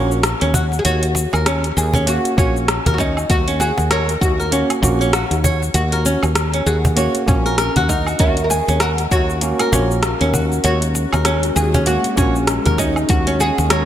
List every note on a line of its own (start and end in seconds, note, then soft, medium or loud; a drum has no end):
0.00 0.33 A#1 loud
0.00 0.20 A#3 medium
0.00 0.10 C#4 loud
0.00 0.21 C#4 medium
0.00 0.21 F#4 medium
0.00 0.50 F#4 medium
0.12 cabasa soft
0.23 cross-stick loud
0.23 closed hi-hat medium
0.23 cabasa soft
0.41 0.79 D#2 medium
0.41 0.53 C#4 loud
0.41 closed hi-hat soft
0.41 cabasa soft
0.54 0.64 F#4 medium
0.54 cajon bass medium
0.54 cabasa medium
0.72 cajon slap soft
0.72 cabasa soft
0.79 0.85 G#4 medium
0.85 1.25 D#2 medium
0.85 1.42 F#4 loud
0.85 1.02 C#5 medium
0.85 closed hi-hat medium
0.85 cabasa soft
1.03 closed hi-hat soft
1.03 cabasa soft
1.15 cajon slap medium
1.15 cabasa medium
1.33 1.71 D#2 medium
1.33 1.45 A#4 medium
1.33 cajon slap medium
1.33 cabasa soft
1.33 low woodblock medium
1.46 1.63 C#4 loud
1.46 cross-stick loud
1.46 closed hi-hat medium
1.46 cabasa soft
1.64 closed hi-hat soft
1.64 cabasa soft
1.77 2.17 D#2 medium
1.77 2.08 G#4 medium
1.77 cabasa medium
1.94 2.06 C#4 loud
1.94 cajon bass medium
1.94 cabasa soft
2.06 2.33 A#3 medium
2.06 2.34 C#4 medium
2.06 2.17 F#4 medium
2.06 2.34 F#4 medium
2.06 2.39 F#4 medium
2.06 closed hi-hat medium
2.06 cabasa soft
2.25 cajon slap soft
2.25 closed hi-hat soft
2.25 cabasa soft
2.37 2.78 A#1 loud
2.37 2.65 A#3 medium
2.37 2.66 C#4 medium
2.37 2.90 C#4 medium
2.37 2.66 F#4 medium
2.37 2.55 C#5 medium
2.37 kick loud
2.37 cajon bass loud
2.37 cabasa medium
2.57 cabasa soft
2.68 cross-stick loud
2.68 closed hi-hat medium
2.68 cabasa soft
2.86 3.24 D#2 medium
2.86 2.98 A#4 medium
2.86 cajon bass medium
2.86 closed hi-hat soft
2.86 cabasa soft
2.94 2.99 F#4 medium
2.98 3.16 C#4 loud
2.98 3.31 D#4 medium
2.98 kick medium
2.98 cajon slap medium
2.98 cabasa medium
3.17 cabasa soft
3.17 low woodblock medium
3.30 3.70 D#2 loud
3.30 3.60 F#4 loud
3.30 kick loud
3.30 closed hi-hat medium
3.30 cabasa soft
3.48 3.59 C#4 loud
3.48 closed hi-hat soft
3.48 cabasa soft
3.60 3.70 F#4 medium
3.60 3.91 G#4 loud
3.60 cajon slap medium
3.60 cabasa medium
3.78 4.16 D#2 medium
3.78 cajon slap medium
3.78 cabasa soft
3.91 4.20 A#4 loud
3.91 4.08 C#5 medium
3.91 cross-stick loud
3.91 closed hi-hat medium
3.91 cabasa soft
4.09 closed hi-hat soft
4.09 cabasa soft
4.21 4.62 D#2 medium
4.21 5.40 F#4 medium
4.21 kick loud
4.21 cabasa medium
4.40 4.51 A#4 medium
4.40 cabasa soft
4.51 4.78 A#3 medium
4.51 4.69 C#4 loud
4.51 4.79 C#4 medium
4.51 4.79 F#4 medium
4.51 closed hi-hat medium
4.51 cabasa soft
4.70 cajon slap soft
4.70 closed hi-hat soft
4.70 cabasa soft
4.70 low woodblock medium
4.82 5.23 A#1 loud
4.82 5.10 A#3 medium
4.82 5.10 C#4 medium
4.82 5.11 F#4 medium
4.82 cajon bass medium
4.82 cabasa medium
5.01 5.12 C#4 medium
5.01 cabasa soft
5.13 5.24 F#4 medium
5.13 cross-stick loud
5.13 closed hi-hat medium
5.13 cabasa soft
5.31 5.69 D#2 medium
5.31 closed hi-hat soft
5.31 cabasa soft
5.44 5.61 C#5 medium
5.44 cajon bass medium
5.44 cabasa medium
5.63 cajon slap soft
5.63 cabasa soft
5.74 6.15 D#2 loud
5.74 6.32 F#4 loud
5.74 closed hi-hat medium
5.74 cabasa soft
5.92 6.04 A#4 medium
5.92 closed hi-hat soft
5.92 cabasa soft
6.05 6.22 C#4 loud
6.05 cajon slap medium
6.05 cabasa medium
6.23 6.61 D#2 medium
6.23 cross-stick soft
6.23 cajon slap medium
6.23 cabasa soft
6.23 low woodblock medium
6.35 cross-stick loud
6.35 closed hi-hat medium
6.35 cabasa soft
6.54 6.65 C#4 medium
6.54 closed hi-hat soft
6.54 cabasa soft
6.66 7.07 D#2 medium
6.66 6.77 F#4 medium
6.66 6.96 G#4 medium
6.66 cabasa medium
6.85 cajon bass medium
6.85 cabasa soft
6.96 7.23 A#3 medium
6.96 7.24 C#4 medium
6.96 7.28 F#4 medium
6.96 7.24 F#4 loud
6.96 7.14 C#5 medium
6.96 closed hi-hat medium
6.96 cabasa soft
7.15 cajon slap soft
7.15 closed hi-hat soft
7.15 cabasa soft
7.26 7.68 A#1 loud
7.26 7.55 A#3 medium
7.26 7.55 C#4 medium
7.26 7.89 C#4 medium
7.26 7.56 F#4 medium
7.26 kick loud
7.26 cajon bass medium
7.26 cabasa medium
7.46 7.57 A#4 loud
7.46 cabasa soft
7.58 7.75 A#4 medium
7.58 cross-stick medium
7.58 closed hi-hat medium
7.58 cabasa soft
7.76 8.14 D#2 medium
7.76 7.88 F#4 loud
7.76 cajon bass medium
7.76 closed hi-hat soft
7.76 cabasa soft
7.89 8.21 D#4 medium
7.89 8.05 A#4 loud
7.89 kick medium
7.89 cajon slap medium
7.89 cabasa medium
8.07 8.19 F#4 medium
8.07 cabasa soft
8.07 low woodblock medium
8.19 8.60 D#2 medium
8.19 13.85 G#3 medium
8.19 8.37 C#4 loud
8.19 8.44 F#4 medium
8.19 13.85 A#4 medium
8.19 kick loud
8.19 closed hi-hat medium
8.19 cabasa soft
8.37 closed hi-hat soft
8.37 cabasa soft
8.44 8.50 A#4 medium
8.44 13.61 A#4 medium
8.50 8.79 G#4 loud
8.50 cajon slap medium
8.50 cabasa medium
8.68 9.06 D#2 medium
8.68 8.80 C#4 loud
8.68 cajon slap medium
8.68 cabasa soft
8.80 8.91 F#4 medium
8.80 8.89 A#4 loud
8.80 cross-stick loud
8.80 closed hi-hat medium
8.80 cabasa soft
8.85 13.85 C#4 medium
8.98 closed hi-hat soft
8.98 cabasa soft
9.11 9.52 D#2 medium
9.11 10.30 F#4 loud
9.11 9.28 C#5 medium
9.11 kick loud
9.11 cabasa medium
9.30 cabasa soft
9.41 9.68 A#3 medium
9.41 9.69 C#4 medium
9.41 9.69 F#4 medium
9.41 closed hi-hat medium
9.41 cabasa soft
9.52 13.85 F#4 medium
9.59 9.71 A#4 medium
9.59 cajon slap soft
9.59 closed hi-hat soft
9.59 cabasa soft
9.59 low woodblock medium
9.72 10.13 A#1 loud
9.72 10.00 A#3 medium
9.72 9.90 C#4 loud
9.72 10.00 C#4 medium
9.72 10.01 F#4 medium
9.72 cajon bass medium
9.72 cabasa medium
9.91 cabasa soft
10.03 cross-stick loud
10.03 closed hi-hat medium
10.03 cabasa soft
10.21 10.59 D#2 medium
10.21 10.32 C#4 loud
10.21 closed hi-hat soft
10.21 cabasa soft
10.34 10.44 F#4 medium
10.34 cajon bass medium
10.34 cabasa medium
10.52 cajon slap soft
10.52 cabasa soft
10.64 11.05 D#2 loud
10.64 11.22 F#4 loud
10.64 10.81 C#5 medium
10.64 closed hi-hat medium
10.64 cabasa soft
10.82 closed hi-hat soft
10.82 cabasa soft
10.95 cajon slap medium
10.95 cabasa medium
11.13 11.50 D#2 medium
11.13 11.24 A#4 medium
11.13 cajon slap medium
11.13 cabasa soft
11.13 low woodblock medium
11.25 11.43 C#4 loud
11.25 cross-stick medium
11.25 closed hi-hat medium
11.25 cabasa soft
11.43 closed hi-hat soft
11.43 cabasa soft
11.56 11.97 D#2 medium
11.56 11.86 G#4 loud
11.56 cabasa medium
11.74 11.86 C#4 loud
11.74 cajon bass medium
11.74 cabasa soft
11.86 12.13 A#3 medium
11.86 12.14 C#4 medium
11.86 12.18 F#4 loud
11.86 11.97 F#4 medium
11.86 12.14 F#4 loud
11.86 closed hi-hat medium
11.86 cabasa soft
12.04 cajon slap soft
12.04 closed hi-hat soft
12.04 cabasa soft
12.16 12.58 A#1 loud
12.16 12.45 A#3 medium
12.16 12.45 C#4 medium
12.16 12.78 C#4 medium
12.16 12.46 F#4 medium
12.16 12.34 C#5 medium
12.16 kick loud
12.16 cajon bass medium
12.16 cabasa medium
12.36 cabasa soft
12.47 cross-stick medium
12.47 closed hi-hat medium
12.47 cabasa soft
12.66 13.03 D#2 medium
12.66 12.77 A#4 medium
12.66 cajon bass medium
12.66 closed hi-hat soft
12.66 cabasa soft
12.78 12.96 C#4 loud
12.78 13.10 D#4 medium
12.78 kick medium
12.78 cajon slap medium
12.78 cabasa medium
12.96 cabasa soft
12.96 low woodblock medium
13.09 13.50 D#2 loud
13.09 13.40 F#4 loud
13.09 kick loud
13.09 closed hi-hat medium
13.09 cabasa soft
13.27 13.39 C#4 loud
13.27 closed hi-hat soft
13.27 cabasa soft
13.40 13.50 F#4 medium
13.40 13.69 G#4 loud
13.40 13.85 G#4 medium
13.40 cajon slap medium
13.40 cabasa medium
13.58 13.85 D#2 medium
13.58 cajon slap medium
13.58 cabasa soft
13.70 13.85 A#4 loud
13.70 13.85 C#5 medium
13.70 cross-stick loud
13.70 closed hi-hat medium
13.70 cabasa soft